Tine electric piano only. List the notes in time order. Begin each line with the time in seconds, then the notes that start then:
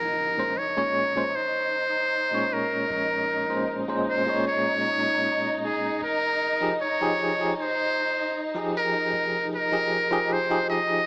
0.37 A#2 G#3 C#4 C5
0.76 A#2 G#3 C#4 C#5
1.15 A#2 G#3 C#4 C5
2.31 A#2 G#3 C#4 C#5
3.49 A#2 G#3 C#4 C5
3.88 A#2 G#3 C#4 C5
4.25 A#2 G#3 C#4 C#5
6.61 F3 D#4 G4 G#4
7.01 F3 D#4 G4 G#4
7.39 F3 D#4 G4 G#4
8.55 F3 D#4 G4 G#4
9.72 F3 D#4 G4 G#4
10.11 F3 D#4 G4 G#4
10.50 F3 D#4 G4 G#4